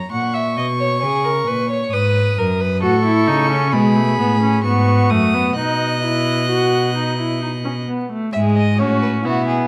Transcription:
0.11 cello A#2, violin F#5 C#6
0.34 violin E5
0.57 cello B2, violin D#5
0.79 violin C#5
1.02 cello C#3, violin G#4
1.25 violin A#4
1.47 cello A#2, violin B4
1.70 violin C#5
1.92 cello G#2, violin B4 D#6
2.38 cello F#2, violin A#4
2.61 violin B4
2.82 cello A2, viola F#4, violin A4 C#6
3.05 viola E4
3.27 cello C#3, viola D#4
3.50 viola C#4
3.71 cello B2, viola G#3, violin G#4 B5
3.96 viola A3
4.18 cello A2, viola B3
4.42 viola C#4
4.63 cello G#2, viola B3, violin F#4 C#6
5.09 cello F#2, viola A3, violin D#6
5.34 viola B3
5.55 cello B2, viola D#4, violin D#5 F#6
6.03 viola E4
6.49 viola F#4
6.95 viola D#4
7.18 viola E4
7.42 viola D#4
7.65 viola C#4
7.88 viola B3
8.11 viola A3
8.33 cello G#2, viola G#3, violin G#4 E5
8.56 violin D#5
8.78 cello A2, viola C#4, violin F#4 C#5
9.02 violin B4
9.24 cello B2, viola B3, violin E4 F#4
9.47 violin G#4

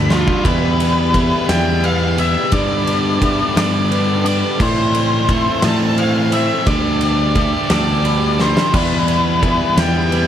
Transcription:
Already playing: picked electric bass D2, clean electric guitar D3 D4, distorted electric guitar G4 A4, ambient pad G4 D5 A5 D6, lead electric guitar B5, vibraphone B5
0.09 overdriven electric guitar D3 A3 D4, clean electric guitar G3, distorted electric guitar G3 G4 A4, lead electric guitar C5, snare
0.13 lead electric guitar A5
0.28 kick
0.42 picked electric bass E2, overdriven electric guitar E3 G3 B3 E4, ambient pad G4 D5, lead electric guitar B4, vibraphone D5, kick, ride
0.47 distorted electric guitar G4, ambient pad B5 E6
0.78 overdriven electric guitar G3 B3 E4, ride
1.12 overdriven electric guitar E3 G3 B3 E4, vibraphone E5, kick, ride
1.17 distorted electric guitar G4
1.47 picked electric bass E2, distorted electric guitar E3 G4, overdriven electric guitar G3 B3 E4, vibraphone D5, lead electric guitar G5, snare, ride
1.83 overdriven electric guitar E3 G3 B3 E4, vibraphone B4, lead electric guitar F5, ride
2.17 overdriven electric guitar G3 B3 E4, distorted electric guitar G4, lead electric guitar E5, ride
2.51 overdriven electric guitar G2 D3 G3 B3 D4, picked electric bass G2, distorted electric guitar G4, ambient pad A4 G5 D6, vibraphone D5, lead electric guitar D5, kick, ride
2.86 overdriven electric guitar G3 B3 D4, ride
3.21 overdriven electric guitar D3 G3 B3 D4, distorted electric guitar G4, vibraphone E5, kick, ride
3.54 picked electric bass G2, overdriven electric guitar B3 D4, distorted electric guitar G4, vibraphone D5, snare, ride
3.58 overdriven electric guitar G3, lead electric guitar D5
3.90 overdriven electric guitar D3 G3 B3 D4, vibraphone B4, ride
4.23 overdriven electric guitar B3 D4, distorted electric guitar G4, lead electric guitar D5, ride
4.29 overdriven electric guitar G3
4.59 overdriven electric guitar A2 E3 A3 C4 E4, picked electric bass A2, distorted electric guitar A4, ambient pad C5 C6 E6, lead electric guitar C5, vibraphone D5, kick, crash
4.93 overdriven electric guitar A3 C4 E4, ride
5.28 overdriven electric guitar E3 A3 C4 E4, distorted electric guitar A4, vibraphone E5, kick, ride
5.62 picked electric bass A2, distorted electric guitar A2 E3 A4, overdriven electric guitar C4 E4, vibraphone D5, lead electric guitar A5, snare, ride
5.66 overdriven electric guitar A3
5.97 overdriven electric guitar E3 A3 C4, vibraphone C5, lead electric guitar F5, ride
6.02 overdriven electric guitar E4
6.31 overdriven electric guitar C4 E4, distorted electric guitar A4, lead electric guitar E5, ride
6.35 overdriven electric guitar A3
6.66 picked electric bass D2, overdriven electric guitar D3 G3 D4 G4, ambient pad G4 D5 A5 D6, vibraphone D5, lead electric guitar D5, kick, ride
6.70 overdriven electric guitar A4
7.01 overdriven electric guitar D4 G4 A4, ride
7.35 overdriven electric guitar G3 D4 G4 A4, vibraphone E5, kick, ride
7.69 picked electric bass D2, distorted electric guitar D3 G3, overdriven electric guitar D4 G4 A4, vibraphone D5, lead electric guitar D5, snare, ride
8.04 overdriven electric guitar G3 D4 G4 A4, vibraphone B5, ride
8.38 overdriven electric guitar D4 G4 A4, lead electric guitar C5, snare
8.57 snare
8.72 picked electric bass E2, overdriven electric guitar E3 G3 B3 E4, ambient pad G4 E5 B5, lead electric guitar B4, vibraphone D5, kick, crash, splash
9.06 overdriven electric guitar G3 B3 E4, ride
9.41 overdriven electric guitar E3 G3 B3 E4, vibraphone E5, kick, ride
9.77 picked electric bass E2, distorted electric guitar E3, overdriven electric guitar G3 B3 E4, vibraphone D5, lead electric guitar G5, snare, ride
10.11 overdriven electric guitar E3 G3 B3 E4, vibraphone B4, ride

